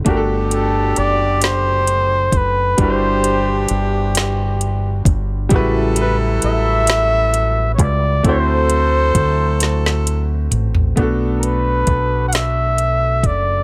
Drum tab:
HH |x-x-x-x-x-x-|x-x-x-x-x-x-|x-x-x-x-x-x-|x-x-x-x-x-x-|
SD |------o-----|------o-----|------o-----|------oo----|
T2 |------------|------------|------------|----------o-|
FT |------------|------------|------------|-----------o|
BD |o---------o-|o---------o-|o---------o-|o---o-------|

HH |x-x-x-x-x-x-|
SD |------o-----|
T2 |------------|
FT |------------|
BD |o---o-----o-|